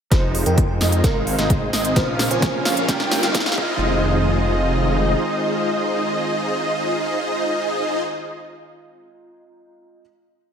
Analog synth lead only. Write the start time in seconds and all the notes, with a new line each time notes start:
0.12 D#5
0.46 G5
0.81 D#5
1.04 F5
1.39 D#5
1.73 D#5
1.96 F5
2.31 G#5
2.65 F5
2.88 G5
3.23 F5
3.58 D#5